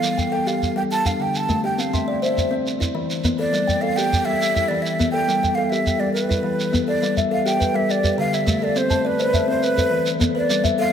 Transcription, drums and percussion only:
0.03 shekere
0.19 shekere
0.47 shekere
0.63 shekere
0.92 shekere
1.06 shekere
1.35 shekere
1.49 shekere
1.79 shekere
1.94 shekere
2.23 shekere
2.38 shekere
2.67 shekere
2.81 shekere
3.10 shekere
3.24 shekere
3.54 shekere
3.69 shekere
3.98 shekere
4.13 shekere
4.42 shekere
4.56 shekere
4.86 shekere
5.00 shekere
5.29 shekere
5.44 shekere
5.73 shekere
5.87 shekere
6.16 shekere
6.31 shekere
6.60 shekere
6.74 shekere
7.03 shekere
7.17 shekere
7.47 shekere
7.61 shekere
7.90 shekere
8.04 shekere
8.33 shekere
8.47 shekere
8.76 shekere
8.91 shekere
9.19 shekere
9.34 shekere
9.63 shekere
9.78 shekere
10.06 shekere
10.21 shekere
10.50 shekere
10.65 shekere

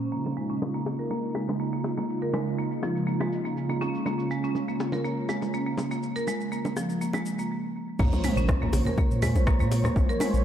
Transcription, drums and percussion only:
0.01 shaker
0.13 shaker
0.26 low bongo, shaker
0.37 shaker
0.50 shaker
0.62 low bongo, shaker
0.75 shaker
0.86 high bongo, shaker
1.00 shaker
1.10 low bongo, shaker
1.35 high bongo, shaker
1.49 low bongo, shaker
1.60 shaker
1.84 high bongo, shaker
1.98 low bongo, shaker
2.10 shaker
2.23 shaker
2.34 low bongo, shaker
2.47 shaker
2.59 shaker
2.72 shaker
2.83 high bongo, low bongo, shaker
2.97 shaker
3.08 shaker
3.20 high bongo, low bongo, shaker
3.32 shaker
3.46 shaker
3.57 shaker
3.69 low bongo, shaker
3.82 high bongo, shaker
3.95 shaker
4.06 low bongo, shaker
4.19 shaker
4.31 shaker
4.44 shaker
4.55 low bongo, shaker
4.69 shaker
4.80 high bongo, shaker
4.92 low bongo, shaker
5.05 shaker
5.29 high bongo, shaker
5.42 low bongo, shaker
5.54 shaker
5.77 high bongo, low bongo, shaker
5.91 shaker
6.03 shaker
6.16 shaker
6.27 low bongo, shaker
6.41 shaker
6.52 shaker
6.65 low bongo, shaker
6.76 high bongo, shaker
6.90 shaker
7.01 shaker
7.13 high bongo, low bongo, shaker
7.26 shaker
7.39 shaker
7.99 kick, mid tom, crash, muted conga, shaker
8.12 low bongo, shaker
8.24 open hi-hat, mid tom, shaker
8.37 muted conga, high conga, shaker
8.49 kick, cross-stick, low bongo, shaker
8.63 low conga
8.73 open hi-hat, high bongo, high conga, shaker
8.85 muted conga, high conga, low conga, shaker
8.98 kick, low bongo, high conga, shaker
9.11 shaker
9.22 open hi-hat, high bongo, muted conga, high conga, low conga, shaker
9.36 low bongo, shaker
9.47 kick, cross-stick, shaker
9.59 muted conga, shaker
9.71 open hi-hat, high bongo, shaker
9.84 cross-stick, low bongo, low conga, shaker
9.96 kick, mid tom, muted conga, shaker
10.09 shaker
10.20 open hi-hat, mid tom, low bongo, shaker
10.34 muted conga, shaker

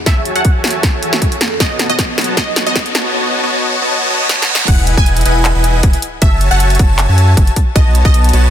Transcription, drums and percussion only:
0.06 kick, snare, closed hi-hat
0.25 closed hi-hat
0.36 closed hi-hat
0.45 kick, closed hi-hat
0.64 snare, closed hi-hat
0.67 closed hi-hat
0.70 closed hi-hat
0.83 kick, snare, closed hi-hat
1.03 closed hi-hat
1.13 snare, closed hi-hat
1.22 kick, closed hi-hat
1.32 closed hi-hat
1.41 snare, closed hi-hat
1.60 kick, snare, closed hi-hat
1.79 snare, closed hi-hat
1.90 closed hi-hat
1.99 kick, snare, closed hi-hat
2.18 snare, closed hi-hat
2.21 closed hi-hat
2.24 closed hi-hat
2.37 kick, snare, closed hi-hat
2.56 snare, closed hi-hat
2.67 closed hi-hat
2.76 kick, snare, closed hi-hat
2.86 closed hi-hat
2.95 snare, closed hi-hat
4.29 snare
4.42 snare
4.55 snare
4.68 kick, closed hi-hat, crash
4.87 closed hi-hat
4.97 kick
5.06 closed hi-hat
5.17 closed hi-hat
5.21 closed hi-hat
5.26 closed hi-hat
5.45 clap, closed hi-hat
5.64 closed hi-hat
5.83 kick, closed hi-hat
5.93 closed hi-hat
6.02 closed hi-hat
6.22 kick, closed hi-hat
6.41 closed hi-hat
6.60 closed hi-hat
6.70 closed hi-hat
6.75 closed hi-hat
6.79 kick, closed hi-hat
6.99 clap, closed hi-hat
7.18 closed hi-hat
7.37 kick, closed hi-hat
7.47 closed hi-hat
7.56 kick, closed hi-hat
7.76 kick, closed hi-hat
7.95 closed hi-hat
8.05 kick
8.14 closed hi-hat
8.24 closed hi-hat
8.29 closed hi-hat
8.33 closed hi-hat

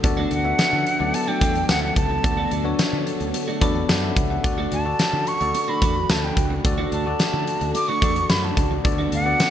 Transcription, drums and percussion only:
0.04 kick, closed hi-hat
0.31 closed hi-hat
0.59 snare, closed hi-hat, tambourine
0.87 closed hi-hat
1.14 closed hi-hat
1.41 kick, closed hi-hat
1.55 closed hi-hat
1.69 snare, closed hi-hat, tambourine
1.96 kick, closed hi-hat
2.24 kick, closed hi-hat
2.51 closed hi-hat
2.79 snare, closed hi-hat, tambourine
3.07 closed hi-hat
3.20 closed hi-hat
3.34 closed hi-hat
3.62 kick, closed hi-hat
3.89 snare, closed hi-hat, tambourine
4.17 kick, closed hi-hat
4.44 kick, closed hi-hat
4.72 closed hi-hat
4.99 snare, closed hi-hat, tambourine
5.27 closed hi-hat
5.41 closed hi-hat
5.54 closed hi-hat
5.82 kick, closed hi-hat
6.09 snare, closed hi-hat, tambourine
6.37 kick, closed hi-hat
6.65 kick, closed hi-hat
6.92 closed hi-hat
7.19 snare, closed hi-hat, tambourine
7.47 closed hi-hat
7.61 closed hi-hat
7.75 closed hi-hat
8.02 kick, closed hi-hat
8.16 closed hi-hat
8.29 snare, closed hi-hat, tambourine
8.57 kick, closed hi-hat
8.85 kick, closed hi-hat
9.12 closed hi-hat
9.40 snare, closed hi-hat, tambourine

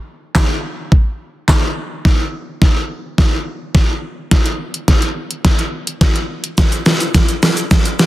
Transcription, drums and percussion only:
0.35 kick, snare, clap
0.92 kick
1.48 kick, snare, clap
2.05 kick, snare
2.62 kick, snare
3.18 kick, snare
3.75 kick, snare
4.31 kick, snare, closed hi-hat
4.46 closed hi-hat
4.74 closed hi-hat
4.88 kick, snare, closed hi-hat
5.02 closed hi-hat
5.31 closed hi-hat
5.45 kick, snare, closed hi-hat
5.59 closed hi-hat
5.87 closed hi-hat
6.01 kick, snare, closed hi-hat
6.16 closed hi-hat
6.44 closed hi-hat
6.58 kick, snare, closed hi-hat, shaker
6.72 closed hi-hat, shaker
6.86 snare, open hi-hat, shaker
7.00 closed hi-hat, shaker
7.14 kick, snare, closed hi-hat, shaker
7.29 closed hi-hat, shaker
7.43 snare, open hi-hat, shaker
7.57 closed hi-hat, shaker
7.71 kick, snare, closed hi-hat, shaker
7.85 closed hi-hat, shaker
7.99 snare, open hi-hat, shaker

